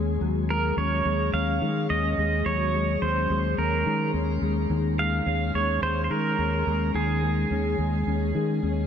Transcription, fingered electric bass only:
Already playing: D#2
0.21 D#2
0.77 D#2
1.05 D#2
1.33 D#2
1.62 D#3
1.90 D#2
2.18 D#2
2.46 D#2
3.02 D#2
3.30 D#2
3.58 D#2
3.86 D#3
4.14 D#2
4.42 D#2
4.70 D#2
5.26 D#2
5.54 D#2
5.82 D#2
6.10 D#3
6.39 D#2
6.67 D#2
6.94 D#2
7.51 D#2
7.79 D#2
8.07 D#2
8.35 D#3
8.63 D#2

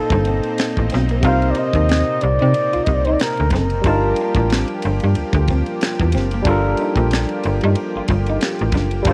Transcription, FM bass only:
0.12 G1
0.78 A1
0.94 B1
1.24 C2
1.75 D#2
2.23 C2
2.42 C3
2.75 C2
2.88 C2
3.40 D2
3.52 F#1
3.85 G1
4.36 A1
4.85 G1
5.04 G2
5.17 D2
5.34 D2
6.01 E2
6.16 F#1
6.46 G1
6.97 A#1
7.45 G1
7.63 G2
7.96 G1
8.10 G1
8.61 A1
8.74 F#1
9.06 G1

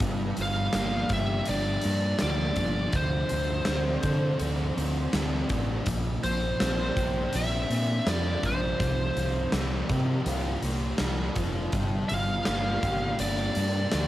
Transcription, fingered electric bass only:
0.01 G1
0.38 G1
0.74 G1
1.10 G1
1.49 G1
1.85 G2
2.22 D2
2.57 G1
2.93 D2
3.32 D2
3.68 D2
4.04 D3
4.40 D2
4.77 D2
5.14 D2
5.50 A1
5.87 A#1
6.24 A#1
6.61 A#1
6.96 A#1
7.35 A#1
7.70 A#2
8.06 F2
8.43 A#1
8.80 C2
9.17 C2
9.53 C2
9.90 C3
10.26 C2
10.63 C2
11.00 C2
11.37 F1
11.73 G1
12.11 G1
12.48 G1
12.83 G1
13.19 G1
13.56 G2
13.93 D2

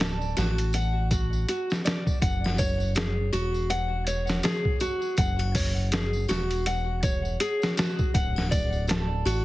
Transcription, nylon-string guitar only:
0.00 A4
0.37 F#4
0.74 F#5
1.11 F#4
1.49 F#4
1.85 D5
2.22 F#5
2.59 C#5
2.95 G#4
3.33 F#4
3.70 F#5
4.07 C#5
4.44 G#4
4.81 F#4
5.18 F#5
5.55 C#5
5.92 G#4
6.29 F#4
6.66 F#5
7.03 C#5
7.40 G#4
7.77 F#4
8.14 F#5
8.51 D5
8.88 A4
9.26 F#4

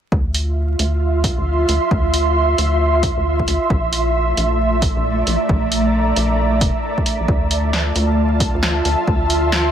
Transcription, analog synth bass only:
0.12 D2
0.79 D2
1.38 D2
1.69 D2
1.91 D2
2.58 D2
3.17 D2
3.48 D2
3.70 A#1
4.37 A#1
4.96 A#1
5.27 A#1
5.49 A#1
6.16 A#1
6.61 F1
7.20 A#1
7.28 D2
7.95 D2
8.55 D2
8.85 D2
9.07 D2

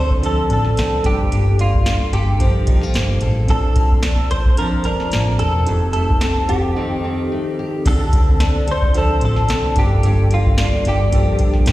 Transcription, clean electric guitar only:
Already playing: C5
0.26 A4
0.53 A4
1.06 G4
1.61 F4
2.13 G4
3.50 A4
4.31 C5
4.58 A#4
4.85 A#4
5.39 A4
5.93 A4
6.49 G4
7.87 A4
8.71 C5
8.98 A4
9.25 A4
9.79 G4
10.34 F4
10.88 G4

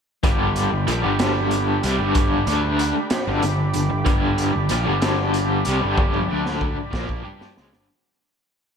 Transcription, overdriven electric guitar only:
0.23 G2 D3 G3
0.71 G2 D3
0.87 A#2 F3
1.03 G2 D3 G3
1.83 C3 G3
2.00 G2 D3 G3
2.47 D3 A3 D4
3.28 G2 D3
3.43 G2 D3
3.74 G2 D3
3.90 G2 D3
4.05 G2 D3 G3
4.53 G2 D3
4.70 A#2 F3
4.85 G2 D3 G3
5.66 C3 G3
5.81 G2 D3 G3
6.28 D3 A3 D4
6.91 A#2 F3 A#3
7.23 G3 D4 G4
7.56 C#3 G#3
7.72 G2 D3

